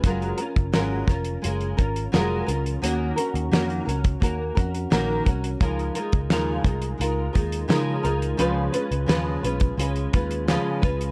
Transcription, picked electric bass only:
X:1
M:4/4
L:1/16
Q:1/4=86
K:Db
V:1 name="Picked electric bass" clef=bass
G,,,2 z G,,, A,,,2 F,,,2 G,,,2 A,,,2 F,,,2 D,,2 | E,,2 z E,, F,,2 D,,2 E,,2 F,,2 B,,,2 C,,2 | D,,2 z D,, E,,2 C,,2 D,,2 E,,2 D,2 D,,2 | D,,2 z D,, E,,2 _C,,2 D,,2 E,,3 z D,,2 |]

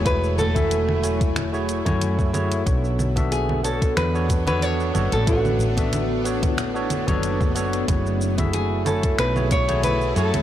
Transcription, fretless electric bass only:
X:1
M:4/4
L:1/16
Q:"Swing 16ths" 1/4=92
K:Bdor
V:1 name="Fretless electric bass" clef=bass
E,,,8- E,,,3 F,,4- F,, | B,,,8 E,,6 F,,, A,,,- | A,,,8- A,,,3 F,,,4- F,,, | F,,,8 B,,,6 F,, E,,, |]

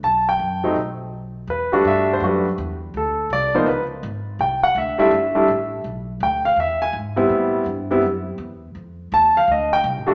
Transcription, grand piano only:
X:1
M:4/4
L:1/8
Q:"Swing" 1/4=165
K:Em
V:1 name="Grand piano"
a g3 z4 | B2 e c B z3 | A2 d c B z3 | g f e e4- e |
z2 g =f e ^g z2 | z8 | z2 a =f _e g z2 |]
V:2 name="Grand piano"
z3 [F,A,C_E] z4 | z [G,A,DF]3 [G,A,DF] z3 | z3 [=F,_B,=B,_E] z4 | z3 [G,A,DE] z [G,A,DE] z2 |
z6 z [G,B,CE]- | [G,B,CE]2 z [G,B,CE] z4 | z6 z [G,A,DF] |]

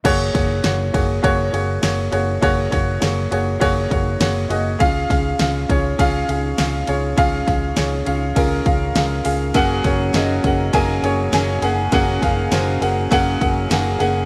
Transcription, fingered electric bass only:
X:1
M:4/4
L:1/8
Q:"Swing 16ths" 1/4=101
K:Gblyd
V:1 name="Fingered electric bass" clef=bass
G,,, G,,, G,,, G,,, G,,, G,,, G,,, G,,, | G,,, G,,, G,,, G,,, G,,, G,,, G,,, G,,, | D,, D,, D,, D,, D,, D,, D,, D,, | D,, D,, D,, D,, D,, D,, D,, D,, |
G,,, G,,, G,,, G,,, G,,, G,,, G,,, G,,, | G,,, G,,, G,,, G,,, G,,, G,,, G,,, G,,, |]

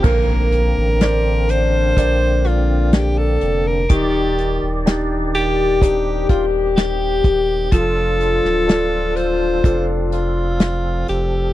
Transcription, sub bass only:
X:1
M:4/4
L:1/16
Q:1/4=62
K:Bb
V:1 name="Sub bass" clef=bass
B,,,3 A,,,4- A,,, B,,,6 F,,,2 | E,,,3 E,,,6- E,,, E,,,4 E,,,2 | F,,,3 D,,,4- D,,, F,,,6 F,,,2 |]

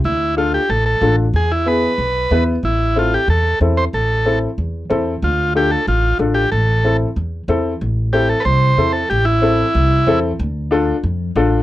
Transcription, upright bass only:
X:1
M:4/4
L:1/8
Q:1/4=186
K:Am
V:1 name="Upright bass" clef=bass
D,,4 A,,,2 A,,,2 | E,,4 B,,,2 E,,2 | A,,,4 E,,2 E,,2 | A,,,4 E,,2 E,,2 |
D,,4 A,,,2 A,,,2 | A,,,4 E,,2 E,,2 | A,,,4 C,,2 E,,2 | A,,,4 C,,2 E,,2 |
D,,4 F,,2 A,,,2 |]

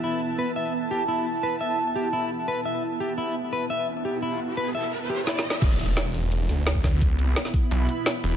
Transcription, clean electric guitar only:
X:1
M:4/4
L:1/8
Q:1/4=172
K:Clyd
V:1 name="Clean electric guitar"
E z B e z G E z | B e z G E z B e | z G E z B e z G | E z B e z G E z |
z8 | z8 |]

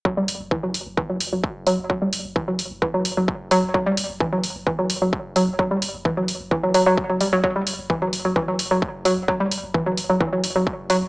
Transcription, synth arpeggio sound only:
X:1
M:4/4
L:1/16
Q:1/4=130
K:Edor
V:1 name="Synth arpeggio sound" clef=bass
F, G, z2 E, F, z2 E, F, z F, z2 F, z | F, G, z2 E, F, z2 E, F, z F, z2 F, z | F, G, z2 E, F, z2 E, F, z F, z2 F, z | F, G, z2 E, F, z2 E, F, F, F, z F, G, F, |
F, G, z2 E, F, z F, E, F, z F, z2 F, z | F, G, z2 E, F, z F, E, F, z F, z2 F, z |]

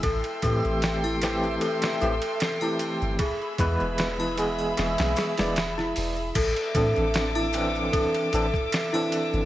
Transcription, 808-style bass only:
X:1
M:4/4
L:1/16
Q:"Swing 16ths" 1/4=76
K:C
V:1 name="808-style bass" clef=bass
A,,, z A,, A,,,4- A,,, z2 A,,, z4 G,,, | z2 E,, E,,,4- E,,, E,,, B,,, z E,,,3 E,,,2 | A,,, z A,, A,,,4- A,,, z2 A,,, z4 G,,, |]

